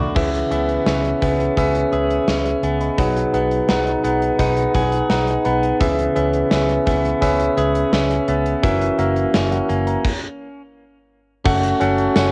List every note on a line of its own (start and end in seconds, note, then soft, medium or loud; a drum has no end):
0.00 0.23 A3 medium
0.00 0.18 D4 loud
0.00 0.23 D4 medium
0.00 0.18 F#4 medium
0.00 0.23 F#4 medium
0.00 0.18 A4 medium
0.00 0.18 D5 medium
0.00 0.16 E5 medium
0.00 0.32 F#5 loud
0.00 0.18 B5 medium
0.00 0.18 C#6 medium
0.00 0.32 D6 medium
0.15 0.42 C#2 loud
0.15 1.18 C#3 medium
0.15 2.98 E3 medium
0.15 0.47 C#4 loud
0.15 0.47 G#4 medium
0.15 0.47 B4 medium
0.15 0.48 E5 loud
0.15 kick loud
0.15 crash medium
0.34 closed hi-hat medium
0.50 0.77 C#2 medium
0.50 1.22 B3 medium
0.50 0.82 C#4 medium
0.50 0.83 G#4 medium
0.50 0.83 B4 medium
0.50 0.83 E5 medium
0.50 closed hi-hat medium
0.69 closed hi-hat soft
0.86 1.12 C#2 loud
0.86 1.18 C#4 medium
0.86 1.56 C#4 medium
0.86 1.18 G#4 medium
0.86 1.18 B4 medium
0.86 1.18 E5 medium
0.86 snare loud
1.05 closed hi-hat soft
1.22 1.48 C#2 medium
1.22 2.63 B3 medium
1.22 1.53 C#4 medium
1.22 1.53 G#4 medium
1.22 1.54 B4 medium
1.22 1.54 E5 medium
1.22 kick medium
1.22 closed hi-hat medium
1.40 closed hi-hat soft
1.57 1.83 C#2 medium
1.57 1.88 C#4 loud
1.57 2.27 C#4 medium
1.57 1.89 G#4 medium
1.57 1.89 B4 medium
1.57 1.89 E5 loud
1.57 kick medium
1.57 closed hi-hat medium
1.75 closed hi-hat soft
1.92 2.18 C#2 medium
1.92 2.24 C#4 medium
1.92 2.24 G#4 medium
1.92 4.75 G#4 medium
1.92 2.24 B4 medium
1.92 2.24 E5 medium
1.92 closed hi-hat medium
2.10 closed hi-hat soft
2.28 2.53 C#2 medium
2.28 3.06 C#4 medium
2.28 snare loud
2.45 2.62 G#4 soft
2.45 2.62 E5 medium
2.45 closed hi-hat medium
2.63 2.88 C#2 medium
2.63 3.34 B3 medium
2.63 2.80 B4 medium
2.63 2.80 G#5 medium
2.63 closed hi-hat medium
2.81 3.15 D#5 medium
2.81 3.14 B5 medium
2.81 closed hi-hat soft
2.98 3.24 B1 loud
2.98 4.00 B2 medium
2.98 5.81 F#3 medium
2.98 3.30 D#4 loud
2.98 3.30 G#4 medium
2.98 3.30 B4 loud
2.98 3.30 F#5 loud
2.98 kick loud
2.98 closed hi-hat medium
3.16 closed hi-hat medium
3.33 3.59 B1 medium
3.33 4.04 B3 medium
3.33 3.65 D#4 medium
3.33 3.65 G#4 medium
3.33 3.65 B4 medium
3.33 3.66 F#5 medium
3.33 closed hi-hat medium
3.51 closed hi-hat soft
3.68 3.95 B1 loud
3.68 4.00 D#4 medium
3.68 4.39 D#4 medium
3.68 4.00 G#4 medium
3.68 4.01 B4 medium
3.68 4.01 F#5 medium
3.68 snare loud
3.87 closed hi-hat soft
4.04 4.30 B1 medium
4.04 5.46 B3 medium
4.04 4.35 D#4 medium
4.04 4.36 G#4 medium
4.04 4.36 B4 medium
4.04 4.36 F#5 medium
4.04 closed hi-hat medium
4.22 closed hi-hat soft
4.39 4.65 B1 loud
4.39 4.71 D#4 loud
4.39 5.09 D#4 medium
4.39 4.71 G#4 medium
4.39 4.71 B4 loud
4.39 4.71 F#5 loud
4.39 kick medium
4.39 closed hi-hat medium
4.57 closed hi-hat medium
4.74 5.00 B1 loud
4.74 5.06 D#4 medium
4.74 5.06 G#4 medium
4.74 7.57 G#4 medium
4.74 5.06 B4 medium
4.74 5.08 D#5 medium
4.74 5.07 F#5 medium
4.74 kick medium
4.74 closed hi-hat medium
4.92 closed hi-hat soft
5.09 5.36 B1 loud
5.09 5.41 D#4 medium
5.09 5.88 D#4 medium
5.09 5.42 G#4 medium
5.09 5.42 B4 medium
5.09 5.42 F#5 medium
5.09 snare loud
5.27 5.44 G#5 medium
5.27 closed hi-hat medium
5.44 5.71 B1 medium
5.44 6.15 B3 medium
5.44 5.76 D#4 medium
5.44 5.77 G#4 medium
5.44 5.77 B4 medium
5.44 5.77 F#5 medium
5.44 5.78 B5 medium
5.44 closed hi-hat medium
5.63 closed hi-hat soft
5.80 6.06 C#2 loud
5.80 6.83 C#3 medium
5.80 8.63 E3 medium
5.80 6.12 C#4 loud
5.80 6.12 G#4 medium
5.80 6.12 B4 medium
5.80 6.12 E5 loud
5.80 kick loud
5.80 closed hi-hat medium
5.99 closed hi-hat medium
6.15 6.42 C#2 medium
6.15 6.86 B3 medium
6.15 6.47 C#4 medium
6.15 6.47 G#4 medium
6.15 6.47 B4 medium
6.15 6.48 E5 medium
6.15 closed hi-hat medium
6.33 closed hi-hat soft
6.50 6.77 C#2 loud
6.50 6.82 C#4 medium
6.50 7.22 C#4 medium
6.50 6.83 G#4 medium
6.50 6.83 B4 medium
6.50 6.83 E5 medium
6.50 snare loud
6.69 closed hi-hat soft
6.86 7.12 C#2 medium
6.86 8.27 B3 medium
6.86 7.18 C#4 medium
6.86 7.18 G#4 medium
6.86 7.18 B4 medium
6.86 7.18 E5 medium
6.86 kick loud
6.86 closed hi-hat medium
7.05 closed hi-hat soft
7.21 7.48 C#2 loud
7.21 7.53 C#4 loud
7.21 7.93 C#4 medium
7.21 7.53 G#4 loud
7.21 7.53 B4 loud
7.21 7.54 E5 loud
7.21 kick medium
7.21 closed hi-hat medium
7.40 closed hi-hat medium
7.57 7.83 C#2 loud
7.57 7.89 C#4 medium
7.57 7.89 G#4 medium
7.57 8.71 G#4 medium
7.57 7.89 B4 medium
7.57 7.89 E5 medium
7.57 closed hi-hat medium
7.75 closed hi-hat medium
7.92 8.18 C#2 loud
7.92 8.24 C#4 medium
7.92 9.33 C#4 medium
7.92 8.24 G#4 medium
7.92 8.24 B4 medium
7.92 8.24 E5 medium
7.92 snare loud
8.10 closed hi-hat medium
8.28 8.54 C#2 medium
8.28 8.71 B3 medium
8.28 8.59 C#4 medium
8.28 8.59 G#4 medium
8.28 8.60 B4 medium
8.28 8.60 E5 medium
8.28 closed hi-hat medium
8.46 closed hi-hat soft
8.63 8.89 F#1 medium
8.63 10.12 E3 medium
8.63 8.94 C#4 loud
8.63 8.95 F#4 medium
8.63 8.95 A#4 loud
8.63 8.95 E5 loud
8.63 kick loud
8.63 closed hi-hat medium
8.82 closed hi-hat medium
8.98 9.24 F#1 medium
8.98 9.68 A#3 medium
8.98 9.30 C#4 medium
8.98 9.30 F#4 medium
8.98 9.30 A#4 medium
8.98 9.30 E5 medium
8.98 closed hi-hat medium
9.16 closed hi-hat soft
9.34 9.60 F#1 loud
9.34 10.61 C#4 medium
9.34 snare loud
9.51 9.68 A#4 medium
9.51 9.68 F#5 medium
9.51 closed hi-hat soft
9.69 9.95 F#1 medium
9.69 10.11 A#3 medium
9.69 9.86 G#5 medium
9.69 closed hi-hat medium
9.87 10.21 C#5 medium
9.87 10.20 A#5 medium
9.87 closed hi-hat soft
10.04 kick loud
10.04 crash medium
11.45 11.71 F#1 loud
11.45 11.80 A3 medium
11.45 11.77 C#4 loud
11.45 11.77 F#4 medium
11.45 12.32 F#4 medium
11.45 11.77 A4 loud
11.45 11.77 F#5 loud
11.45 kick loud
11.45 crash medium
11.63 closed hi-hat medium
11.80 12.07 F#1 medium
11.80 12.32 A3 medium
11.80 12.12 C#4 loud
11.80 12.12 F#4 loud
11.80 12.12 A4 medium
11.80 12.13 F#5 loud
11.80 closed hi-hat medium
11.98 closed hi-hat soft
12.16 12.32 F#1 loud
12.16 12.32 C#4 medium
12.16 12.32 F#4 medium
12.16 12.32 A4 medium
12.16 12.32 F#5 medium
12.16 snare loud
12.16 tambourine medium